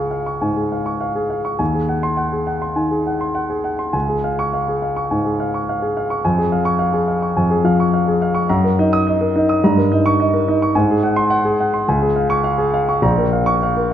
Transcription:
0.00 0.39 C#2 soft
0.00 0.56 G#4 soft
0.00 0.11 F5 soft
0.00 0.42 G#5 soft
0.00 0.26 C#6 medium
0.11 0.35 F5 soft
0.26 0.51 C#6 soft
0.41 0.90 G#2 soft
0.41 0.66 G#5 soft
0.56 0.81 G#4 soft
0.72 0.96 F5 soft
0.86 1.10 C#6 soft
1.01 1.24 F5 soft
1.15 1.39 G#4 soft
1.30 1.54 F5 soft
1.45 1.60 C#6 soft
1.59 2.74 D#2 soft
1.59 1.83 G#5 soft
1.74 1.98 G#4 soft
1.89 2.13 F#5 soft
2.03 2.27 C6 medium
2.17 2.42 F#5 soft
2.32 2.57 G#4 soft
2.47 2.72 F#5 soft
2.62 2.86 C6 soft
2.76 3.24 D#3 soft
2.76 3.01 G#5 soft
2.91 3.15 G#4 soft
3.07 3.30 F#5 soft
3.21 3.45 C6 soft
3.35 3.59 F#5 soft
3.50 3.73 G#4 soft
3.64 3.88 F#5 soft
3.79 3.94 C6 soft
3.93 5.06 C#2 soft
3.93 4.17 G#5 soft
4.09 4.32 G#4 soft
4.24 4.47 F5 soft
4.39 4.61 C#6 medium
4.54 4.76 F5 soft
4.68 4.91 G#4 soft
4.82 5.05 F5 soft
4.96 5.20 C#6 soft
5.11 5.57 G#2 soft
5.11 5.34 G#5 soft
5.25 5.49 G#4 soft
5.40 5.63 F5 soft
5.54 5.77 C#6 soft
5.69 5.91 F5 soft
5.82 6.04 G#4 soft
5.97 6.18 F5 soft
6.10 6.24 C#6 soft
6.25 7.33 F2 soft
6.25 6.46 G#5 soft
6.38 6.60 G#4 soft
6.52 6.74 F5 soft
6.65 6.87 C#6 medium
6.79 7.01 F5 medium
6.93 7.16 G#4 soft
7.08 7.30 F5 soft
7.22 7.45 C#6 soft
7.37 8.45 F2 soft
7.37 7.59 G#5 soft
7.50 7.73 G#4 soft
7.64 8.09 F3 soft
7.64 7.87 F5 medium
7.80 8.01 C#6 soft
7.94 8.15 F5 soft
8.08 8.29 G#4 soft
8.22 8.43 F5 soft
8.35 8.48 C#6 soft
8.49 9.59 F#2 medium
8.49 8.71 A#5 medium
8.64 8.86 A#4 soft
8.79 9.24 D#4 soft
8.79 9.00 D#5 medium
8.93 9.15 D#6 medium
9.07 9.29 D#5 medium
9.21 9.43 A#4 soft
9.36 9.63 D#4 soft
9.36 9.57 D#5 soft
9.49 9.62 D#6 soft
9.64 10.72 G2 medium
9.64 9.85 A#5 medium
9.77 9.99 A#4 soft
9.92 10.36 D#4 soft
9.92 10.13 D#5 medium
10.06 10.27 C#6 medium
10.20 10.41 D#5 soft
10.34 10.55 A#4 soft
10.48 10.75 D#4 soft
10.48 10.70 D#5 soft
10.62 10.75 C#6 medium
10.75 11.84 G#2 medium
10.75 10.97 G#5 medium
10.91 11.12 G#4 soft
11.03 11.25 F#5 soft
11.16 11.39 C6 medium
11.30 11.53 F#5 medium
11.45 11.67 G#4 medium
11.60 11.82 F#5 soft
11.74 11.87 C6 soft
11.88 13.00 C#2 medium
11.88 12.10 G#5 soft
12.02 12.24 G#4 soft
12.16 12.38 F5 medium
12.30 12.53 C#6 medium
12.44 12.67 F5 medium
12.58 12.82 G#4 medium
12.74 12.97 F5 medium
12.89 13.03 C#6 medium
13.02 13.94 A#1 medium
13.02 13.27 A#5 medium
13.18 13.42 A#4 soft
13.33 13.56 F5 soft
13.46 13.71 C#6 medium
13.63 13.86 F5 medium
13.77 13.94 A#4 soft

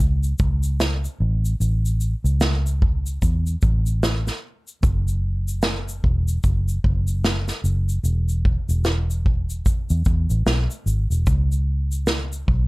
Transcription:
0.00 0.32 C#2 medium
0.23 shaker medium
0.39 1.06 C#2 medium
0.39 kick loud
0.39 shaker soft
0.63 shaker medium
0.80 snare loud
0.80 shaker medium
1.04 shaker soft
1.20 1.53 A1 loud
1.45 shaker soft
1.60 2.13 A1 loud
1.60 shaker medium
1.86 shaker soft
2.01 shaker soft
2.24 3.17 C#2 medium
2.24 shaker soft
2.41 snare loud
2.41 shaker medium
2.67 shaker soft
2.82 kick medium
3.06 shaker medium
3.22 3.55 E2 medium
3.22 kick medium
3.22 shaker medium
3.47 shaker soft
3.62 4.29 A1 medium
3.62 kick medium
3.62 shaker soft
3.86 shaker medium
4.03 snare loud
4.03 shaker medium
4.27 snare soft
4.27 shaker soft
4.68 shaker soft
4.83 5.99 F#1 loud
4.83 kick loud
4.83 shaker medium
5.08 shaker soft
5.48 shaker medium
5.63 snare loud
5.63 shaker medium
5.88 shaker medium
6.04 6.37 E1 medium
6.04 kick medium
6.28 shaker medium
6.44 6.77 F#1 medium
6.44 kick medium
6.44 shaker medium
6.68 shaker soft
6.84 7.50 F#1 medium
6.84 kick medium
7.08 shaker medium
7.25 snare loud
7.25 shaker medium
7.48 snare soft
7.48 shaker soft
7.64 7.97 F#1 medium
7.64 shaker medium
7.89 shaker soft
8.03 8.57 E1 loud
8.03 shaker medium
8.29 shaker soft
8.45 kick loud
8.69 9.62 E1 medium
8.69 shaker medium
8.85 snare loud
8.85 shaker medium
9.11 shaker soft
9.26 kick medium
9.50 shaker medium
9.66 kick medium
9.66 shaker medium
9.90 10.03 E2 medium
9.90 shaker soft
10.05 10.26 E2 medium
10.05 kick loud
10.05 shaker soft
10.30 10.43 A1 medium
10.30 shaker medium
10.46 10.66 B1 medium
10.46 snare loud
10.46 shaker medium
10.71 shaker medium
10.86 11.06 G#1 medium
10.86 shaker medium
11.10 11.24 E1 medium
11.10 shaker soft
11.27 12.44 C#2 loud
11.27 kick loud
11.27 shaker medium
11.52 shaker soft
11.92 shaker medium
12.07 snare loud
12.07 shaker medium
12.33 shaker medium
12.48 12.68 B1 medium
12.48 kick medium

